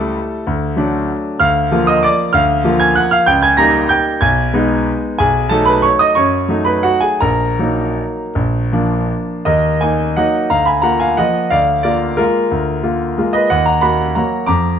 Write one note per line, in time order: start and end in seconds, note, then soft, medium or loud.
0.00 0.18 C#2 medium
0.00 0.43 G3 medium
0.00 0.44 A3 medium
0.00 0.44 E4 medium
0.00 1.22 A4 medium
0.00 1.25 A5 medium
0.47 0.76 D2 medium
0.76 1.36 F#3 medium
0.76 1.36 A3 soft
0.76 1.37 D4 medium
1.39 1.70 D2 medium
1.39 1.84 F5 medium
1.39 1.87 F6 loud
1.71 2.30 F3 medium
1.71 2.30 A#3 medium
1.71 2.30 F4 medium
1.87 2.03 D#5 medium
1.87 2.03 D#6 loud
2.03 2.32 D5 medium
2.03 2.34 D6 loud
2.33 2.64 D2 medium
2.33 2.77 F5 medium
2.33 2.80 F6 loud
2.64 3.23 F3 medium
2.64 3.23 A#3 medium
2.64 3.23 F4 medium
2.80 2.95 G#5 medium
2.80 2.96 G#6 loud
2.95 3.11 F#5 medium
2.95 3.12 F#6 medium
3.11 3.27 F5 medium
3.11 3.27 F6 loud
3.26 3.58 C#2 medium
3.26 3.42 G5 loud
3.26 3.42 G6 loud
3.42 3.58 G#5 medium
3.42 3.59 G#6 loud
3.57 4.18 G3 medium
3.57 4.18 A#3 medium
3.57 4.18 D#4 medium
3.57 3.88 A#5 medium
3.57 3.90 A#6 loud
3.89 4.20 G5 medium
3.89 4.21 G6 loud
4.21 4.53 B1 medium
4.21 5.00 G#5 medium
4.21 5.03 G#6 loud
4.54 5.16 G#3 medium
4.54 5.16 B3 medium
4.54 5.16 D#4 medium
5.18 5.50 B1 medium
5.18 5.49 G#4 medium
5.18 5.50 G#5 loud
5.49 6.12 F#3 medium
5.49 6.13 A3 medium
5.49 6.13 D#4 medium
5.49 5.66 A4 medium
5.49 5.67 A5 medium
5.65 5.83 B4 medium
5.65 5.83 B5 loud
5.82 5.99 C#5 medium
5.82 6.00 C#6 loud
5.99 6.16 D#5 medium
5.99 6.16 D#6 loud
6.15 6.48 F#2 medium
6.15 6.63 C#5 medium
6.15 6.66 C#6 loud
6.49 7.17 F#3 soft
6.49 7.17 A3 soft
6.49 7.18 D#4 medium
6.65 6.83 B4 medium
6.65 6.83 B5 medium
6.83 7.01 F#4 medium
6.83 7.02 F#5 medium
7.01 7.20 G#4 medium
7.01 7.20 G#5 medium
7.20 7.58 A#1 medium
7.20 9.05 A#4 medium
7.20 9.09 A#5 medium
7.59 8.32 F#3 soft
7.59 8.32 A#3 soft
7.59 8.32 D#4 soft
8.35 8.71 A#1 medium
8.72 9.42 F3 soft
8.72 9.42 A#3 soft
8.72 9.43 D4 soft
9.45 9.80 D#2 medium
9.45 9.79 A#4 medium
9.45 9.80 D#5 medium
9.81 10.13 A#3 soft
9.81 10.13 D#4 soft
9.81 10.14 D#5 medium
9.81 10.16 G#5 medium
10.16 10.47 F#3 soft
10.16 10.47 A#3 soft
10.16 10.47 D#4 soft
10.16 10.49 D#5 medium
10.16 10.50 F#5 medium
10.50 10.82 D2 medium
10.50 10.66 F5 medium
10.50 10.66 A#5 medium
10.65 10.82 G#5 medium
10.65 10.83 B5 medium
10.82 11.14 A#3 soft
10.82 11.14 F4 soft
10.82 10.99 F#5 medium
10.82 11.00 A#5 medium
11.00 11.17 F5 medium
11.00 11.18 G#5 medium
11.17 11.48 F3 soft
11.17 11.48 A#3 soft
11.17 11.49 F4 soft
11.17 11.49 D#5 medium
11.17 11.51 F#5 medium
11.50 11.83 D2 medium
11.50 11.82 D5 medium
11.50 11.84 F5 medium
11.83 12.15 A#3 soft
11.83 12.15 F4 soft
11.83 12.15 A#4 medium
11.83 12.18 D5 medium
12.17 12.47 G#3 soft
12.17 12.48 A#3 soft
12.17 12.82 F4 medium
12.17 13.33 A#4 medium
12.51 12.82 D2 medium
12.83 13.14 A#3 soft
12.83 13.14 F4 soft
13.18 13.47 G#3 soft
13.18 13.48 A#3 soft
13.18 13.48 F4 soft
13.33 13.49 B4 medium
13.33 13.50 D#5 medium
13.50 13.82 D#2 medium
13.50 13.65 D#5 medium
13.50 13.65 F#5 medium
13.66 13.81 F#5 medium
13.66 13.82 A#5 medium
13.81 14.12 A#3 soft
13.81 14.12 F#4 soft
13.81 14.13 F#5 medium
13.81 14.15 B5 loud
14.15 14.45 F#3 soft
14.15 14.46 A#3 soft
14.15 14.46 F#4 soft
14.15 14.46 F#5 medium
14.15 14.46 A#5 medium
14.46 14.79 F2 medium
14.46 14.79 A#5 medium
14.46 14.79 D6 medium